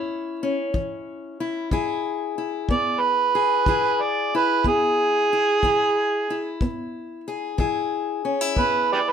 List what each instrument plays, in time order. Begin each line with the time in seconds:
Already playing: steel-string acoustic guitar A2 C#4 E4
0.43 steel-string acoustic guitar C#4
0.74 steel-string acoustic guitar E3, kick
1.40 steel-string acoustic guitar E4
1.71 steel-string acoustic guitar E3 E4 G#4, kick
2.38 steel-string acoustic guitar E4
2.69 steel-string acoustic guitar B3, harmonica D5, kick
3.01 harmonica B4
3.35 steel-string acoustic guitar G#4
3.66 steel-string acoustic guitar E3 E4 G#4, kick
4.02 harmonica D5
4.35 steel-string acoustic guitar E4, harmonica B4
4.64 steel-string acoustic guitar B3, harmonica G#4, kick
5.33 steel-string acoustic guitar E4
5.63 steel-string acoustic guitar E3 E4, kick
6.30 steel-string acoustic guitar E4
6.61 steel-string acoustic guitar B3, kick
7.28 steel-string acoustic guitar G#4
7.58 steel-string acoustic guitar E3 E4 G#4, kick
8.25 steel-string acoustic guitar C#4
8.41 steel-string acoustic guitar E4
8.57 steel-string acoustic guitar B3, harmonica B4, kick
8.93 harmonica G4 B4 D5
9.10 harmonica B4